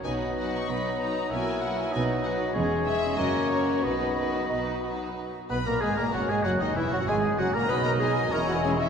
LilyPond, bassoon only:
\new Staff \with { instrumentName = "Bassoon" } { \clef bass \time 2/4 \key b \major \tempo 4 = 95 fis2~ | fis2 | gis4 ais4 | b4 dis'8 fis'8 |
r8 b16 ais16 gis16 ais16 fis16 gis16 | fis16 dis16 e16 fis16 gis8 fis16 ais16 | fis4 gis4 | }